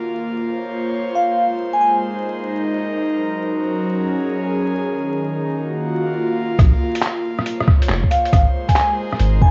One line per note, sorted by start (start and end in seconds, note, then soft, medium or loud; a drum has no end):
0.00 2.09 A#3 medium
0.00 2.09 F4 medium
0.23 3.81 C5 medium
0.45 1.38 C#5 medium
1.15 1.43 F5 medium
1.38 3.11 G#3 medium
1.73 1.78 G#5 medium
1.81 1.90 G#5 medium
2.00 3.83 D#4 medium
2.19 5.57 A#4 medium
3.11 4.85 F#3 medium
3.51 5.57 C#4 medium
3.89 5.57 G#4 medium
4.87 6.60 D#3 medium
5.33 9.04 A#3 medium
5.48 6.59 F#4 medium
5.61 9.04 F4 medium
6.59 6.72 A#1 loud
6.59 kick loud
6.59 cross-stick medium
6.59 closed hi-hat medium
6.95 closed hi-hat medium
7.03 clap loud
7.03 closed hi-hat medium
7.39 9.51 C5 medium
7.39 8.33 C#5 medium
7.39 cross-stick medium
7.46 closed hi-hat medium
7.60 cross-stick medium
7.68 kick loud
7.68 cross-stick medium
7.82 closed hi-hat medium
7.89 8.03 F1 loud
7.89 clap loud
8.04 kick medium
8.11 8.39 F5 medium
8.11 closed hi-hat medium
8.25 closed hi-hat soft
8.33 8.46 G#1 loud
8.33 9.51 G#3 loud
8.33 kick loud
8.33 cross-stick medium
8.33 closed hi-hat medium
8.69 8.74 G#5 medium
8.69 kick medium
8.69 closed hi-hat medium
8.73 9.51 A#4 medium
8.73 8.86 G#5 medium
8.73 clap loud
8.73 closed hi-hat medium
8.96 9.51 D#4 medium
9.13 cross-stick medium
9.19 9.43 G#1 loud
9.19 closed hi-hat medium
9.41 9.51 F#1 medium
9.41 9.51 G#5 medium
9.41 kick loud